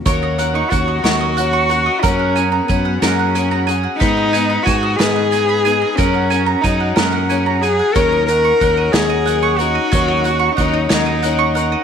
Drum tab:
HH |xxxxxx|xxxxxx|xxxxxx|xxxxxx|
SD |---o--|---o--|---o--|---o--|
BD |o-o---|o-o---|o-o---|o-o---|

HH |xxxxxx|xxxxxx|
SD |---o--|---o--|
BD |o-o---|o-o---|